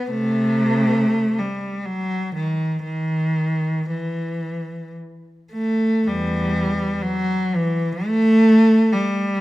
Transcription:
Already playing: B3
0.10 C3 A3
1.39 G3
1.86 F#3
2.35 D#3
2.84 D#3
3.90 E3
5.53 A3
6.07 E2 G3
7.02 F#3
7.55 E3
8.06 A3
8.93 G3

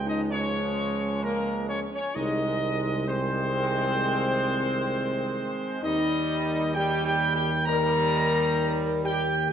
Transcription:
Already playing: C#2 F3 G#3
0.06 D#4 D#5
0.30 F3 G#3 C#4 C#5
1.23 A#3 A#4
1.69 C#4 C#5
1.91 C#4 C#5
2.15 C2 D#3 G#3 D#4 D#5
3.07 D#3 G#3 C4 C5
5.82 D#2 D#3 G3 D#4 D#5
6.75 D#3 G3 G4 G5
7.06 G4 G5
7.35 G4 G5
7.65 D#3 G3 A#4 A#5
9.04 G4 G5

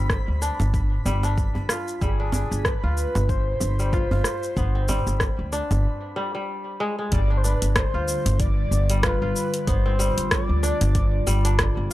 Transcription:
Already playing: G1 G3 C4 F4 B5
0.10 kick, cross-stick, cabasa
0.28 D2
0.42 D4, cabasa
0.60 G1, djembe slap, cabasa
0.74 kick, cabasa
1.06 G1 G3, djembe tone, cabasa
1.23 D4, djembe slap, cabasa
1.38 kick, cabasa
1.55 G1, djembe tone
1.69 F4, cross-stick, cabasa
1.88 cabasa
2.01 G1 G3 G#4, kick, cabasa
2.20 D4
2.32 D4, djembe slap, djembe bass, cabasa
2.52 G1, cabasa
2.65 B4, kick, cross-stick, cabasa
2.84 D2 F4
2.97 cabasa
3.15 G1, djembe slap, djembe tone, cabasa
3.29 C5, kick, cabasa
3.60 G1, djembe tone, cabasa
3.79 G3, cabasa
3.93 F4, kick, cabasa
4.11 G1 F4, djembe bass
4.24 cross-stick, djembe slap, cabasa
4.43 cabasa
4.57 G1 B3, kick, cabasa
4.75 C4
4.88 G3, djembe slap, djembe bass, cabasa
5.07 G1, cabasa
5.20 kick, cross-stick, cabasa
5.39 D2
5.52 D4, cabasa
5.71 G1, djembe slap, djembe tone, cabasa
6.16 G3
6.35 G3
6.80 G#3
6.99 G#3
7.11 G1 D3 G3 D5, kick, closed hi-hat, cabasa
7.30 D4
7.37 C5
7.43 D4 B4, cabasa
7.59 G1 G3, closed hi-hat, cabasa
7.75 C5, kick, cross-stick, closed hi-hat, cabasa
7.94 D2 F4
8.08 cabasa
8.26 G1, closed hi-hat, cabasa
8.39 D5, kick, closed hi-hat, cabasa
8.71 G1, cabasa
8.90 G3, closed hi-hat, cabasa
9.03 F4 B4, kick, cross-stick, closed hi-hat, cabasa
9.22 G1 F4
9.36 F4, cabasa
9.54 closed hi-hat, cabasa
9.67 G1 B3 C5, kick, closed hi-hat, cabasa
9.86 C4
9.99 G3, cabasa
10.17 G1, closed hi-hat, cabasa
10.30 D5, kick, cross-stick, closed hi-hat, cabasa
10.49 D2
10.63 D4, cabasa
10.81 G1, closed hi-hat, cabasa
10.95 kick, closed hi-hat, cabasa
11.27 G1 G3, cabasa
11.45 D4, closed hi-hat, cabasa
11.59 kick, cross-stick, closed hi-hat, cabasa
11.77 G1

